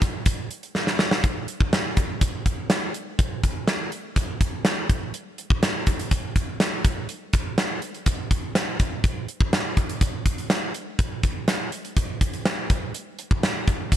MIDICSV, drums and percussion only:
0, 0, Header, 1, 2, 480
1, 0, Start_track
1, 0, Tempo, 487805
1, 1219, Time_signature, 4, 2, 24, 8
1, 13745, End_track
2, 0, Start_track
2, 0, Title_t, "Drums"
2, 16, Note_on_c, 9, 42, 82
2, 18, Note_on_c, 9, 36, 91
2, 115, Note_off_c, 9, 42, 0
2, 116, Note_off_c, 9, 36, 0
2, 252, Note_on_c, 9, 42, 98
2, 256, Note_on_c, 9, 36, 94
2, 350, Note_off_c, 9, 42, 0
2, 355, Note_off_c, 9, 36, 0
2, 498, Note_on_c, 9, 42, 69
2, 596, Note_off_c, 9, 42, 0
2, 620, Note_on_c, 9, 42, 58
2, 719, Note_off_c, 9, 42, 0
2, 737, Note_on_c, 9, 38, 61
2, 836, Note_off_c, 9, 38, 0
2, 856, Note_on_c, 9, 38, 65
2, 955, Note_off_c, 9, 38, 0
2, 975, Note_on_c, 9, 38, 95
2, 1073, Note_off_c, 9, 38, 0
2, 1096, Note_on_c, 9, 38, 98
2, 1194, Note_off_c, 9, 38, 0
2, 1217, Note_on_c, 9, 42, 77
2, 1219, Note_on_c, 9, 36, 102
2, 1315, Note_off_c, 9, 42, 0
2, 1317, Note_off_c, 9, 36, 0
2, 1456, Note_on_c, 9, 42, 68
2, 1555, Note_off_c, 9, 42, 0
2, 1579, Note_on_c, 9, 36, 80
2, 1678, Note_off_c, 9, 36, 0
2, 1700, Note_on_c, 9, 42, 73
2, 1701, Note_on_c, 9, 38, 93
2, 1799, Note_off_c, 9, 38, 0
2, 1799, Note_off_c, 9, 42, 0
2, 1936, Note_on_c, 9, 42, 66
2, 1939, Note_on_c, 9, 36, 74
2, 2035, Note_off_c, 9, 42, 0
2, 2038, Note_off_c, 9, 36, 0
2, 2176, Note_on_c, 9, 42, 86
2, 2178, Note_on_c, 9, 36, 79
2, 2275, Note_off_c, 9, 42, 0
2, 2276, Note_off_c, 9, 36, 0
2, 2418, Note_on_c, 9, 36, 69
2, 2419, Note_on_c, 9, 42, 58
2, 2517, Note_off_c, 9, 36, 0
2, 2517, Note_off_c, 9, 42, 0
2, 2654, Note_on_c, 9, 38, 93
2, 2657, Note_on_c, 9, 42, 76
2, 2753, Note_off_c, 9, 38, 0
2, 2755, Note_off_c, 9, 42, 0
2, 2896, Note_on_c, 9, 42, 69
2, 2994, Note_off_c, 9, 42, 0
2, 3138, Note_on_c, 9, 36, 102
2, 3139, Note_on_c, 9, 42, 76
2, 3236, Note_off_c, 9, 36, 0
2, 3238, Note_off_c, 9, 42, 0
2, 3379, Note_on_c, 9, 42, 67
2, 3380, Note_on_c, 9, 36, 77
2, 3478, Note_off_c, 9, 42, 0
2, 3479, Note_off_c, 9, 36, 0
2, 3616, Note_on_c, 9, 38, 96
2, 3616, Note_on_c, 9, 42, 73
2, 3714, Note_off_c, 9, 42, 0
2, 3715, Note_off_c, 9, 38, 0
2, 3856, Note_on_c, 9, 42, 65
2, 3955, Note_off_c, 9, 42, 0
2, 4095, Note_on_c, 9, 42, 84
2, 4096, Note_on_c, 9, 36, 76
2, 4193, Note_off_c, 9, 42, 0
2, 4194, Note_off_c, 9, 36, 0
2, 4336, Note_on_c, 9, 36, 74
2, 4337, Note_on_c, 9, 42, 61
2, 4435, Note_off_c, 9, 36, 0
2, 4435, Note_off_c, 9, 42, 0
2, 4572, Note_on_c, 9, 38, 96
2, 4575, Note_on_c, 9, 42, 75
2, 4671, Note_off_c, 9, 38, 0
2, 4673, Note_off_c, 9, 42, 0
2, 4816, Note_on_c, 9, 42, 69
2, 4817, Note_on_c, 9, 36, 93
2, 4915, Note_off_c, 9, 36, 0
2, 4915, Note_off_c, 9, 42, 0
2, 5056, Note_on_c, 9, 42, 78
2, 5155, Note_off_c, 9, 42, 0
2, 5296, Note_on_c, 9, 42, 70
2, 5395, Note_off_c, 9, 42, 0
2, 5415, Note_on_c, 9, 36, 87
2, 5514, Note_off_c, 9, 36, 0
2, 5536, Note_on_c, 9, 42, 75
2, 5537, Note_on_c, 9, 38, 93
2, 5635, Note_off_c, 9, 38, 0
2, 5635, Note_off_c, 9, 42, 0
2, 5772, Note_on_c, 9, 42, 67
2, 5776, Note_on_c, 9, 36, 79
2, 5871, Note_off_c, 9, 42, 0
2, 5874, Note_off_c, 9, 36, 0
2, 5898, Note_on_c, 9, 42, 48
2, 5997, Note_off_c, 9, 42, 0
2, 6014, Note_on_c, 9, 42, 83
2, 6015, Note_on_c, 9, 36, 80
2, 6112, Note_off_c, 9, 42, 0
2, 6114, Note_off_c, 9, 36, 0
2, 6256, Note_on_c, 9, 36, 67
2, 6257, Note_on_c, 9, 42, 56
2, 6354, Note_off_c, 9, 36, 0
2, 6356, Note_off_c, 9, 42, 0
2, 6495, Note_on_c, 9, 38, 98
2, 6498, Note_on_c, 9, 42, 80
2, 6593, Note_off_c, 9, 38, 0
2, 6596, Note_off_c, 9, 42, 0
2, 6735, Note_on_c, 9, 42, 69
2, 6736, Note_on_c, 9, 36, 92
2, 6833, Note_off_c, 9, 42, 0
2, 6835, Note_off_c, 9, 36, 0
2, 6975, Note_on_c, 9, 42, 80
2, 7074, Note_off_c, 9, 42, 0
2, 7213, Note_on_c, 9, 42, 72
2, 7218, Note_on_c, 9, 36, 79
2, 7311, Note_off_c, 9, 42, 0
2, 7316, Note_off_c, 9, 36, 0
2, 7456, Note_on_c, 9, 42, 79
2, 7457, Note_on_c, 9, 38, 90
2, 7555, Note_off_c, 9, 38, 0
2, 7555, Note_off_c, 9, 42, 0
2, 7694, Note_on_c, 9, 42, 64
2, 7792, Note_off_c, 9, 42, 0
2, 7817, Note_on_c, 9, 42, 48
2, 7916, Note_off_c, 9, 42, 0
2, 7932, Note_on_c, 9, 42, 86
2, 7935, Note_on_c, 9, 36, 78
2, 8030, Note_off_c, 9, 42, 0
2, 8033, Note_off_c, 9, 36, 0
2, 8175, Note_on_c, 9, 36, 74
2, 8176, Note_on_c, 9, 42, 58
2, 8274, Note_off_c, 9, 36, 0
2, 8275, Note_off_c, 9, 42, 0
2, 8415, Note_on_c, 9, 38, 95
2, 8418, Note_on_c, 9, 42, 81
2, 8514, Note_off_c, 9, 38, 0
2, 8516, Note_off_c, 9, 42, 0
2, 8654, Note_on_c, 9, 42, 74
2, 8657, Note_on_c, 9, 36, 82
2, 8753, Note_off_c, 9, 42, 0
2, 8755, Note_off_c, 9, 36, 0
2, 8893, Note_on_c, 9, 42, 79
2, 8895, Note_on_c, 9, 36, 105
2, 8992, Note_off_c, 9, 42, 0
2, 8993, Note_off_c, 9, 36, 0
2, 9136, Note_on_c, 9, 42, 67
2, 9234, Note_off_c, 9, 42, 0
2, 9255, Note_on_c, 9, 36, 87
2, 9353, Note_off_c, 9, 36, 0
2, 9376, Note_on_c, 9, 42, 77
2, 9377, Note_on_c, 9, 38, 92
2, 9475, Note_off_c, 9, 38, 0
2, 9475, Note_off_c, 9, 42, 0
2, 9613, Note_on_c, 9, 42, 66
2, 9614, Note_on_c, 9, 36, 78
2, 9711, Note_off_c, 9, 42, 0
2, 9712, Note_off_c, 9, 36, 0
2, 9736, Note_on_c, 9, 42, 52
2, 9834, Note_off_c, 9, 42, 0
2, 9851, Note_on_c, 9, 36, 79
2, 9851, Note_on_c, 9, 42, 92
2, 9950, Note_off_c, 9, 36, 0
2, 9950, Note_off_c, 9, 42, 0
2, 10092, Note_on_c, 9, 36, 68
2, 10093, Note_on_c, 9, 42, 63
2, 10190, Note_off_c, 9, 36, 0
2, 10191, Note_off_c, 9, 42, 0
2, 10216, Note_on_c, 9, 42, 48
2, 10315, Note_off_c, 9, 42, 0
2, 10331, Note_on_c, 9, 38, 94
2, 10334, Note_on_c, 9, 42, 76
2, 10429, Note_off_c, 9, 38, 0
2, 10432, Note_off_c, 9, 42, 0
2, 10572, Note_on_c, 9, 42, 73
2, 10671, Note_off_c, 9, 42, 0
2, 10813, Note_on_c, 9, 36, 105
2, 10813, Note_on_c, 9, 42, 78
2, 10911, Note_off_c, 9, 42, 0
2, 10912, Note_off_c, 9, 36, 0
2, 11053, Note_on_c, 9, 42, 72
2, 11055, Note_on_c, 9, 36, 82
2, 11151, Note_off_c, 9, 42, 0
2, 11154, Note_off_c, 9, 36, 0
2, 11294, Note_on_c, 9, 38, 92
2, 11294, Note_on_c, 9, 42, 79
2, 11392, Note_off_c, 9, 42, 0
2, 11393, Note_off_c, 9, 38, 0
2, 11534, Note_on_c, 9, 42, 72
2, 11632, Note_off_c, 9, 42, 0
2, 11658, Note_on_c, 9, 42, 52
2, 11756, Note_off_c, 9, 42, 0
2, 11774, Note_on_c, 9, 36, 83
2, 11776, Note_on_c, 9, 42, 92
2, 11873, Note_off_c, 9, 36, 0
2, 11875, Note_off_c, 9, 42, 0
2, 12015, Note_on_c, 9, 36, 76
2, 12018, Note_on_c, 9, 42, 60
2, 12114, Note_off_c, 9, 36, 0
2, 12117, Note_off_c, 9, 42, 0
2, 12137, Note_on_c, 9, 42, 49
2, 12236, Note_off_c, 9, 42, 0
2, 12255, Note_on_c, 9, 38, 106
2, 12258, Note_on_c, 9, 42, 78
2, 12354, Note_off_c, 9, 38, 0
2, 12356, Note_off_c, 9, 42, 0
2, 12495, Note_on_c, 9, 42, 73
2, 12497, Note_on_c, 9, 36, 94
2, 12594, Note_off_c, 9, 42, 0
2, 12595, Note_off_c, 9, 36, 0
2, 12737, Note_on_c, 9, 42, 80
2, 12835, Note_off_c, 9, 42, 0
2, 12975, Note_on_c, 9, 42, 72
2, 13073, Note_off_c, 9, 42, 0
2, 13097, Note_on_c, 9, 36, 91
2, 13195, Note_off_c, 9, 36, 0
2, 13218, Note_on_c, 9, 42, 80
2, 13219, Note_on_c, 9, 38, 93
2, 13316, Note_off_c, 9, 42, 0
2, 13317, Note_off_c, 9, 38, 0
2, 13455, Note_on_c, 9, 42, 71
2, 13457, Note_on_c, 9, 36, 80
2, 13554, Note_off_c, 9, 42, 0
2, 13556, Note_off_c, 9, 36, 0
2, 13696, Note_on_c, 9, 36, 80
2, 13699, Note_on_c, 9, 42, 92
2, 13745, Note_off_c, 9, 36, 0
2, 13745, Note_off_c, 9, 42, 0
2, 13745, End_track
0, 0, End_of_file